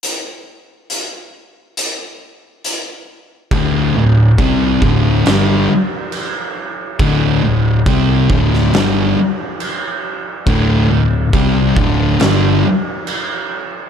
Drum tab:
CC |----------------|x---x---x---x---|x---x---x---x---|x---x---x---x---|
HH |x---x---x---x---|----------------|----------------|----------------|
SD |----------------|--------o-------|-------oo-------|--------o-------|
BD |----------------|o---o-o---------|o---o-o---------|o---o-o---------|